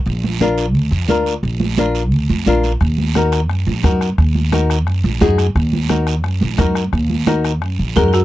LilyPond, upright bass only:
\new Staff \with { instrumentName = "Upright bass" } { \clef bass \time 4/4 \key ees \minor \tempo 4 = 175 bes,,2 d,8 f,8 d,4 | bes,,2 d,8 f,8 bes,,4 | ees,2 ges,8 bes,,8 ges,4 | ees,2 ges,8 bes,,8 ges,4 |
ees,2 ges,8 bes,,8 ges,4 | ees,2 ges,8 bes,,8 ges,4 | }